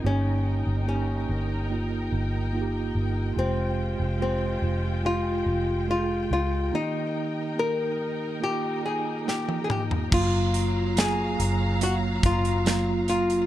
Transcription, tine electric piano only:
<<
  \new Staff \with { instrumentName = "Tine electric piano" } { \time 4/4 \key ees \mixolydian \tempo 4 = 71 <bes ees' g'>4 <bes ees' g'>4 <bes ees' f'>4 <bes ees' f' g'>4 | <aes f' g'>4 <aes f' g'>4 <aes f' g'>4 <aes f' aes'>4 | <bes ees' g'>4 <bes ees' g'>4 <bes ees' f'>4 <bes ees' g'>4 | <ges bes f'>4 <ges bes f'>4 <ges bes f''>4 <ges bes f'>4 | }
  \new Staff \with { instrumentName = "Tine electric piano" } { \clef bass \time 4/4 \key ees \mixolydian g,4. r2 r8 | r1 | ees4. r2 r8 | r1 | }
>>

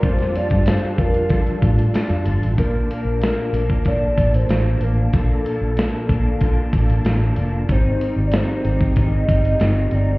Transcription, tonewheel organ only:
\new Staff \with { instrumentName = "Tonewheel organ" } { \time 4/4 \key bes \major \tempo 4 = 94 <g d' f' a''>1 | <f bes d' a''>1~ | <f bes d' a''>1 | <aes c' ees' g'>1 | }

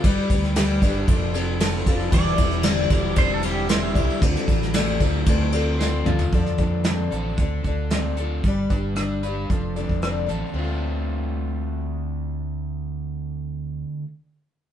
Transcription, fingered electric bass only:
\new Staff \with { instrumentName = "Fingered electric bass" } { \clef bass \time 4/4 \key d \dorian \tempo 4 = 114 g,,16 r16 d,4 g,,8 f,,4. f,,8 | e,,8 e,,4 e,,8 e,,4. c,16 r16 | d,16 r16 a,,4 d,8 d,4. d,8 | f,8 f,4 a,,8 d,8 d,4. |
g,,8 g,,4. f,,8. f,,8. a,,16 r16 | d,1~ | d,1 | }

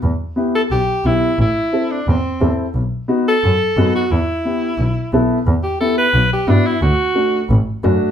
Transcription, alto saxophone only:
\new Staff \with { instrumentName = "Alto saxophone" } { \time 4/4 \key e \minor \tempo 4 = 177 r4. a'8 g'4 e'4 | e'4. d'8 c'4. r8 | r4. a'2 fis'8 | e'2. r4 |
r8 g'8 a'8 b'4 g'8 d'8 e'8 | fis'2 r2 | }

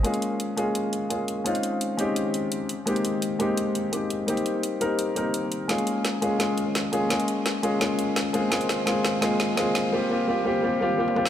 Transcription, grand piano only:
\new Staff \with { instrumentName = "Grand piano" } { \time 4/4 \key bes \dorian \tempo 4 = 170 <aes bes des' f' aes'>4. <aes bes des' f' aes'>8 r4 <aes bes des' f' aes'>4 | <aes c' des' ees' f'>4. <aes c' des' ees' g'>2 r8 | <aes bes c' ees' g'>4. <aes bes c' ees' g'>8 r4 <aes bes c' ees' g'>4 | <g bes c' ees' g'>4. <g bes c' ees' bes'>4 <g bes c' ees' bes'>4. |
<aes bes des' f' aes'>4. <aes bes des' f' aes'>8 <aes bes des' f' aes'>4. <aes bes des' f' aes'>8 | <aes bes des' f' aes'>4. <aes bes des' f' aes'>8 <aes bes des' f' aes'>4. <aes bes c' f' aes'>8 | <aes bes c' f' aes'>4 <aes bes c' f' aes'>4 <aes bes c' f' aes'>4 <aes bes c' f' aes'>4 | <g bes c' f' g'>8 <g bes c' f' g'>8 <g bes c' f' g'>8 <g bes c' f' g'>8 <g bes c' f' g'>8 <g bes c' f' g'>8 <g bes c' f' g'>8 <g bes c' f' g'>8 | }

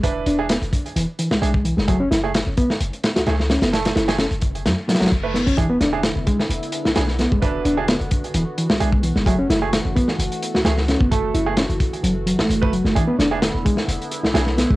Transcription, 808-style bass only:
\new Staff \with { instrumentName = "808-style bass" } { \clef bass \time 4/4 \key e \mixolydian \tempo 4 = 130 e,,8 e,,8. e,,16 r8 e,,16 r8 b,,16 b,,8. fis,,16~ | fis,,8 fis,,8. fis,,16 r8 fis,,16 r8 cis,16 cis,8. fis,,16~ | fis,,8 fis,,8. fis,,8. fis,16 r8 fis,,16 fis,,8. e,,16~ | e,,8 e,,8. e,,16 r8 e,,16 r8 b,,16 b,,8. e,,16~ |
e,,8 e,,8. e,,16 r8 e,,16 r8 b,,16 b,,8. fis,,16~ | fis,,8 fis,,8. fis,,16 r8 fis,,16 r8 cis,16 cis,8. fis,,16~ | fis,,8 fis,,8. fis,,16 r8 fis,,8. fis,,16 fis,,8. fis,,16 | r8 e,,8. e,,16 r8 e,,16 r8 b,,16 b,,8. e,,16 | }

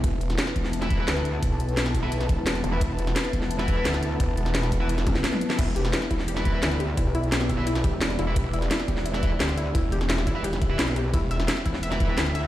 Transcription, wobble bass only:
\new Staff \with { instrumentName = "Wobble bass" } { \clef bass \time 4/4 \key e \minor \tempo 4 = 173 r4. e,,4. d,4 | b,,2~ b,,8 e,,4 r8 | r4. e,,4. d,4 | r2 r8 g,,8 r4 |
r4. e,,4. d,4 | b,,2~ b,,8 e,,4 r8 | r4. e,,4. d,4 | r4. e,,4. b,,4 |
r4. e,,4. d,4 | }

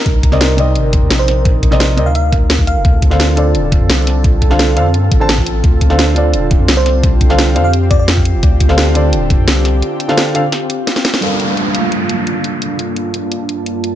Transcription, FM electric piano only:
\new Staff \with { instrumentName = "FM electric piano" } { \time 4/4 \key g \minor \tempo 4 = 172 r2. r16 c''8.~ | c''16 r4. f''16 f''8 r4 f''8~ | f''8 r2. r8 | r1 |
r2. r16 c''8.~ | c''16 r4. f''16 r8 d''16 d''16 r4 | r1 | r1 |
r1 | r1 | }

